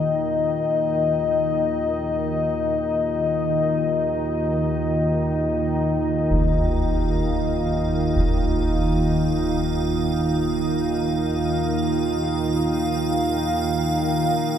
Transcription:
Already playing: synth drone D#2 D#3, analog synth pad A#3 D#4 F4 D#5
6.31 ambient pad F5, concert bass drum
8.16 concert bass drum
11.19 analog synth pad F5

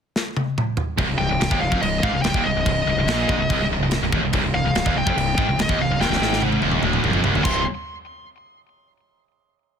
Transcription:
0.16 snare
0.37 high tom
0.58 mid tom
0.77 floor tom
0.98 fingered electric bass C1, distorted electric guitar C2, kick, crash
1.08 fingered electric bass C1, distorted electric guitar C2
1.18 fingered electric bass C1, distorted electric guitar C2, lead electric guitar G5
1.30 fingered electric bass C1, distorted electric guitar C2
1.40 fingered electric bass C1, distorted electric guitar C2, snare, crash
1.51 fingered electric bass D#1, distorted electric guitar D#2, kick
1.60 fingered electric bass C1, distorted electric guitar C2, lead electric guitar F5
1.72 fingered electric bass F1, distorted electric guitar F2, kick
1.81 fingered electric bass C1, distorted electric guitar C2, lead electric guitar D#5, crash
2.03 fingered electric bass G#1, distorted electric guitar G#2, lead electric guitar F5, kick
2.13 fingered electric bass C1, distorted electric guitar C2
2.22 fingered electric bass C1, distorted electric guitar C2, lead electric guitar G5, snare, crash
2.34 fingered electric bass D#1, distorted electric guitar D#2, kick
2.44 fingered electric bass C1, distorted electric guitar C2, lead electric guitar D#5
2.54 fingered electric bass C1, distorted electric guitar C2
2.66 fingered electric bass C1, distorted electric guitar C2, kick, crash
2.86 fingered electric bass C1, distorted electric guitar C2
2.96 fingered electric bass C1, distorted electric guitar C2
3.06 fingered electric bass A#1, distorted electric guitar A#2, snare, crash
3.28 fingered electric bass A#1, distorted electric guitar A#2, kick
3.36 fingered electric bass C1, distorted electric guitar C2
3.50 fingered electric bass C1, distorted electric guitar C2, kick, crash
3.57 fingered electric bass C1
3.61 distorted electric guitar C2
3.69 fingered electric bass C1, distorted electric guitar C2
3.78 fingered electric bass C1
3.83 distorted electric guitar C2
3.91 snare, crash
4.00 fingered electric bass C1, distorted electric guitar C2
4.12 fingered electric bass D#1, distorted electric guitar D#2, kick
4.22 fingered electric bass C1, distorted electric guitar C2
4.33 fingered electric bass C1, distorted electric guitar C2, kick, crash
4.43 fingered electric bass C1, distorted electric guitar C2
4.54 fingered electric bass C1, distorted electric guitar C2, lead electric guitar F5
4.64 fingered electric bass C1, distorted electric guitar C2
4.75 fingered electric bass C1, distorted electric guitar C2, snare, crash
4.85 fingered electric bass D#1, distorted electric guitar D#2, kick
4.95 fingered electric bass C1, distorted electric guitar C2, lead electric guitar G5
5.06 fingered electric bass F1, distorted electric guitar F2, kick
5.16 fingered electric bass C1, distorted electric guitar C2, crash
5.38 fingered electric bass G#1, distorted electric guitar G#2, kick
5.48 fingered electric bass C1, distorted electric guitar C2
5.58 fingered electric bass C1, distorted electric guitar C2, lead electric guitar D#5, snare, crash
5.69 fingered electric bass D#1, distorted electric guitar D#2, kick
5.79 fingered electric bass C1, distorted electric guitar C2, lead electric guitar F5
5.88 fingered electric bass C1, distorted electric guitar C2
6.00 fingered electric bass D#1, distorted electric guitar D#2, lead electric guitar G5, snare
6.10 fingered electric bass C1, distorted electric guitar C2, snare
6.19 fingered electric bass G#1, distorted electric guitar G#2, snare
6.33 snare
6.42 high tom
6.52 high tom
6.62 fingered electric bass D#1, distorted electric guitar D#2, high tom
6.71 mid tom
6.82 fingered electric bass D1, distorted electric guitar D2, mid tom
6.93 mid tom
7.04 fingered electric bass C1, distorted electric guitar C2, mid tom
7.13 fingered electric bass F1, distorted electric guitar F2, mid tom
7.23 fingered electric bass C1, distorted electric guitar C2, mid tom
7.33 fingered electric bass D1, distorted electric guitar D2, floor tom
7.44 fingered electric bass C1, distorted electric guitar C2 G2 C3, lead electric guitar C6, kick, crash

